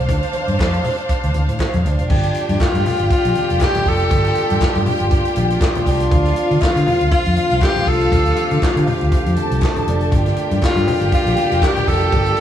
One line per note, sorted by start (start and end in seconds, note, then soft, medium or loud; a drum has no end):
0.00 2.06 D4 medium
0.00 2.06 C5 medium
0.00 2.06 F5 medium
0.09 0.19 D2 medium
0.09 kick loud
0.09 closed hi-hat medium
0.09 muted conga soft
0.09 low conga medium
0.23 closed hi-hat soft
0.33 closed hi-hat medium
0.33 muted conga soft
0.33 high conga medium
0.48 0.59 G2 medium
0.48 closed hi-hat soft
0.48 high conga medium
0.59 0.78 F2 medium
0.59 kick loud
0.59 snare loud
0.59 clap medium
0.59 muted conga soft
0.74 closed hi-hat soft
0.84 open hi-hat medium
0.84 muted conga soft
0.84 low conga medium
0.98 closed hi-hat soft
1.09 kick loud
1.09 closed hi-hat medium
1.23 1.32 D2 medium
1.23 closed hi-hat soft
1.34 1.45 D2 medium
1.34 closed hi-hat medium
1.34 muted conga soft
1.34 high conga medium
1.48 1.57 A2 medium
1.48 closed hi-hat soft
1.59 kick medium
1.59 snare loud
1.59 clap medium
1.59 muted conga soft
1.74 1.82 F2 medium
1.74 closed hi-hat soft
1.74 high conga medium
1.74 low conga medium
1.85 1.95 D2 loud
1.85 2.62 D4 medium
1.85 closed hi-hat medium
1.85 muted conga soft
1.99 2.07 F1 medium
1.99 closed hi-hat soft
2.09 2.28 G1 loud
2.09 12.40 D3 medium
2.09 6.07 G3 medium
2.09 12.40 A3 medium
2.09 6.07 A#3 medium
2.09 8.07 F4 medium
2.09 6.07 G4 medium
2.09 6.07 G5 loud
2.09 kick loud
2.09 crash loud
2.09 muted conga soft
2.09 low conga medium
2.23 closed hi-hat soft
2.35 closed hi-hat medium
2.35 muted conga soft
2.49 2.57 G2 loud
2.49 closed hi-hat soft
2.49 high conga medium
2.60 3.11 F4 loud
2.60 muted fingered electric bass stroke soft
2.60 kick loud
2.60 snare loud
2.60 clap loud
2.60 clap medium
2.74 2.82 G2 loud
2.74 closed hi-hat soft
2.86 open hi-hat medium
2.86 muted conga soft
2.86 low conga medium
2.99 3.08 G1 medium
2.99 closed hi-hat medium
3.10 3.64 F4 medium
3.10 kick loud
3.10 closed hi-hat medium
3.25 3.33 A#1 medium
3.25 closed hi-hat medium
3.35 closed hi-hat medium
3.35 muted conga soft
3.35 high conga medium
3.50 3.58 F1 medium
3.50 closed hi-hat soft
3.60 3.90 G4 loud
3.60 kick loud
3.60 snare loud
3.60 clap loud
3.60 muted conga soft
3.74 closed hi-hat medium
3.74 high conga medium
3.74 low conga medium
3.86 4.04 F1 medium
3.86 4.87 A4 loud
3.86 kick medium
3.86 open hi-hat medium
4.00 closed hi-hat soft
4.11 4.29 G1 loud
4.11 kick loud
4.11 closed hi-hat medium
4.11 muted conga soft
4.11 low conga medium
4.25 snare soft
4.25 closed hi-hat medium
4.35 closed hi-hat medium
4.35 muted conga soft
4.50 4.59 G2 medium
4.50 closed hi-hat soft
4.50 high conga medium
4.61 muted fingered electric bass stroke soft
4.61 kick loud
4.61 snare loud
4.61 clap medium
4.61 clap loud
4.61 muted conga soft
4.75 4.84 G2 medium
4.75 closed hi-hat soft
4.86 open hi-hat medium
4.86 muted conga soft
4.86 low conga medium
5.00 5.19 G1 medium
5.00 closed hi-hat medium
5.11 kick loud
5.11 closed hi-hat medium
5.11 muted conga soft
5.25 closed hi-hat soft
5.36 5.55 A#1 loud
5.36 closed hi-hat medium
5.36 muted conga soft
5.36 high conga medium
5.50 closed hi-hat medium
5.61 kick loud
5.61 snare loud
5.61 clap loud
5.61 clap medium
5.61 muted conga soft
5.75 closed hi-hat medium
5.75 high conga medium
5.75 low conga medium
5.86 6.05 C2 medium
5.86 6.63 D4 medium
5.86 kick medium
5.86 open hi-hat medium
5.86 muted conga soft
6.00 closed hi-hat soft
6.11 6.30 D2 loud
6.11 10.08 F3 medium
6.11 10.08 C4 medium
6.11 9.33 F4 medium
6.11 9.33 F5 loud
6.11 kick loud
6.11 closed hi-hat medium
6.11 muted conga soft
6.11 low conga medium
6.25 snare soft
6.25 closed hi-hat soft
6.36 closed hi-hat medium
6.36 muted conga soft
6.51 6.59 D3 loud
6.51 closed hi-hat soft
6.51 high conga medium
6.62 7.11 F4 loud
6.62 muted fingered electric bass stroke soft
6.62 kick loud
6.62 snare loud
6.62 clap medium
6.62 muted conga soft
6.64 clap medium
6.76 6.84 D3 loud
6.76 closed hi-hat medium
6.87 open hi-hat medium
6.87 low conga medium
7.01 7.09 D2 medium
7.01 closed hi-hat medium
7.11 7.64 F4 loud
7.11 kick loud
7.11 closed hi-hat medium
7.11 muted conga soft
7.26 7.34 F2 loud
7.26 closed hi-hat soft
7.36 closed hi-hat medium
7.36 muted conga soft
7.36 high conga medium
7.51 7.59 C2 medium
7.51 closed hi-hat medium
7.61 7.89 G4 loud
7.61 kick loud
7.61 snare loud
7.61 clap loud
7.61 muted conga soft
7.64 clap medium
7.76 closed hi-hat soft
7.76 high conga medium
7.76 low conga medium
7.87 8.05 C2 medium
7.87 8.87 A4 loud
7.87 kick medium
7.87 open hi-hat medium
7.87 muted conga soft
8.01 closed hi-hat soft
8.11 8.30 D2 loud
8.11 10.10 G4 loud
8.11 kick loud
8.11 closed hi-hat medium
8.11 low conga medium
8.26 closed hi-hat soft
8.36 closed hi-hat medium
8.36 muted conga soft
8.36 high conga medium
8.51 8.59 D3 loud
8.51 closed hi-hat medium
8.51 high conga medium
8.62 muted fingered electric bass stroke soft
8.62 kick loud
8.62 snare loud
8.62 clap loud
8.62 clap medium
8.62 muted conga soft
8.76 8.84 D3 loud
8.76 closed hi-hat medium
8.87 open hi-hat medium
8.87 low conga medium
9.01 9.09 D2 medium
9.01 closed hi-hat medium
9.12 kick loud
9.12 closed hi-hat medium
9.26 9.34 F2 medium
9.26 closed hi-hat medium
9.36 10.11 A4 medium
9.36 10.11 A5 medium
9.36 closed hi-hat medium
9.36 muted conga soft
9.36 high conga medium
9.51 9.59 C2 medium
9.51 closed hi-hat medium
9.62 kick loud
9.62 snare loud
9.62 clap loud
9.62 muted conga soft
9.64 clap medium
9.76 closed hi-hat medium
9.76 high conga medium
9.76 low conga medium
9.87 10.05 F1 medium
9.87 10.59 D4 medium
9.87 closed hi-hat medium
9.87 muted conga soft
10.01 closed hi-hat soft
10.12 10.30 G1 loud
10.12 12.40 G3 medium
10.12 12.40 A#3 medium
10.12 12.40 F4 medium
10.12 12.40 G4 loud
10.12 12.40 G5 loud
10.12 kick loud
10.12 closed hi-hat medium
10.12 muted conga soft
10.12 low conga medium
10.26 snare soft
10.26 closed hi-hat soft
10.37 closed hi-hat medium
10.37 muted conga soft
10.51 10.59 G2 loud
10.51 closed hi-hat soft
10.51 high conga medium
10.62 muted fingered electric bass stroke medium
10.62 kick loud
10.62 snare loud
10.62 clap loud
10.64 11.10 F4 loud
10.64 clap medium
10.76 10.84 G2 loud
10.76 closed hi-hat medium
10.87 open hi-hat medium
10.87 muted conga soft
10.87 low conga medium
11.01 11.09 G1 loud
11.01 closed hi-hat soft
11.12 11.66 F4 loud
11.12 kick loud
11.12 closed hi-hat medium
11.12 muted conga soft
11.26 11.34 A#1 medium
11.26 closed hi-hat medium
11.37 closed hi-hat medium
11.37 high conga medium
11.52 11.60 F1 medium
11.52 closed hi-hat soft
11.62 11.90 G4 loud
11.62 kick loud
11.62 snare loud
11.62 clap medium
11.76 closed hi-hat medium
11.76 high conga medium
11.76 low conga medium
11.87 12.06 F1 medium
11.87 12.40 A4 loud
11.87 kick medium
11.87 open hi-hat medium
12.01 closed hi-hat soft
12.12 12.31 G1 loud
12.12 kick loud
12.12 closed hi-hat medium
12.12 low conga medium
12.26 closed hi-hat soft
12.37 closed hi-hat medium